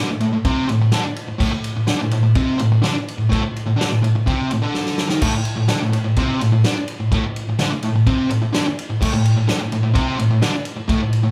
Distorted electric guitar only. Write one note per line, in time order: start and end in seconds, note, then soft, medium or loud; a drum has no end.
0.10 0.20 A2 medium
0.21 0.32 A2 medium
0.33 0.45 A2 medium
0.45 0.68 C3 medium
0.45 0.69 C4 loud
0.69 0.80 A2 medium
0.81 0.92 A2 medium
0.92 1.04 D3 medium
0.92 1.05 D4 loud
1.05 muted distorted electric guitar stroke medium
1.28 1.37 A2 medium
1.38 1.50 A2 loud
1.38 1.51 A3 loud
1.51 1.71 A2 medium
1.76 1.86 A2 medium
1.87 1.99 D3 medium
1.87 2.00 D4 loud
2.00 2.11 A2 medium
2.12 2.22 A2 medium
2.23 2.35 A2 medium
2.35 2.59 C3 loud
2.35 2.60 C4 loud
2.59 2.71 A2 medium
2.72 2.82 A2 medium
2.82 2.94 D3 loud
2.82 2.95 D4 loud
2.95 muted distorted electric guitar stroke medium
3.18 3.28 A2 medium
3.29 3.41 A2 medium
3.29 3.43 A3 medium
3.42 3.62 A2 medium
3.66 3.76 A2 medium
3.76 3.89 D3 loud
3.76 3.90 D4 loud
3.90 4.01 A2 medium
4.02 4.14 A2 medium
4.15 4.26 A2 medium
4.26 4.50 C3 loud
4.26 4.51 C4 loud
4.51 4.61 A2 medium
4.62 5.08 D3 medium
4.62 5.10 D4 loud
5.08 5.21 D#3 medium
5.08 5.22 D#4 medium
5.22 5.33 A2 medium
5.22 5.34 A3 loud
5.35 5.53 A2 medium
5.57 5.68 A2 medium
5.68 5.80 D3 loud
5.68 5.81 D4 loud
5.81 5.92 A2 medium
5.93 6.03 A2 medium
6.04 6.16 A2 medium
6.17 6.40 C3 medium
6.17 6.41 C4 loud
6.41 6.51 A2 medium
6.52 6.64 A2 medium
6.65 6.75 D3 medium
6.65 6.77 D4 loud
6.76 muted distorted electric guitar stroke medium
7.00 7.10 A2 medium
7.12 7.22 A2 medium
7.12 7.24 A3 loud
7.24 7.43 A2 medium
7.49 7.59 A2 medium
7.59 7.70 D3 loud
7.59 7.71 D4 loud
7.71 7.82 A2 medium
7.83 7.94 A2 medium
7.95 8.06 A2 medium
8.06 8.29 C3 loud
8.06 8.30 C4 loud
8.30 8.41 A2 medium
8.42 8.53 A2 medium
8.53 8.65 D3 medium
8.53 8.66 D4 loud
8.67 muted distorted electric guitar stroke medium
8.90 9.00 A2 medium
9.01 9.12 A2 medium
9.01 9.13 A3 loud
9.13 9.32 A2 medium
9.36 9.47 A2 medium
9.47 9.59 D3 loud
9.47 9.60 D4 loud
9.60 9.71 A2 medium
9.72 9.82 A2 medium
9.83 9.93 A2 medium
9.94 10.18 C3 medium
9.94 10.18 C4 loud
10.18 10.29 A2 medium
10.31 10.41 A2 medium
10.42 10.53 D3 loud
10.42 10.54 D4 loud
10.54 muted distorted electric guitar stroke medium
10.76 10.87 A2 medium
10.88 10.99 A2 loud
10.88 11.01 A3 loud
11.01 11.20 A2 medium
11.23 11.31 A2 medium